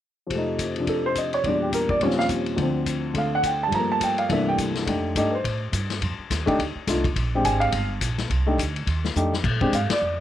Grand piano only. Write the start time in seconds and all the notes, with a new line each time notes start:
0.27 F2 C3
0.34 A3 D#4
0.77 C3 F3 D4
0.89 A4
1.06 C5
1.18 D#5
1.34 C#5
1.46 E2 A#2 G3 D4 D5
1.62 G4
1.74 A#4
1.90 D5
2.02 D#2 A#2 F3 G3 C4 C#4 C#5
2.19 F5
2.56 D2 D3 F3
2.62 C4
3.14 D3 A3
3.18 F5
3.35 F#5
3.46 G5
3.63 A5
3.68 G2 F3
3.75 A3 A#3 A#5
3.92 A5
4.04 G5
4.19 F5
4.29 C2 G2 E3 A3 A#3 E5
4.33 D4
4.49 G5
4.86 A3 D4 D#4 G4
5.17 A3 D4 D#4 G4 D#5
5.31 B4
5.35 C5
6.46 A3 D4 D#4 G4
6.88 A3 D4 D#4 F4
7.35 G#3 C4 D4 G4
7.45 G#5
7.60 F5
8.47 A3 D4 D#4 G4
9.16 A3 D4 D#4 G4
9.61 G#3 C4 D4 G4
9.75 F5
9.91 D5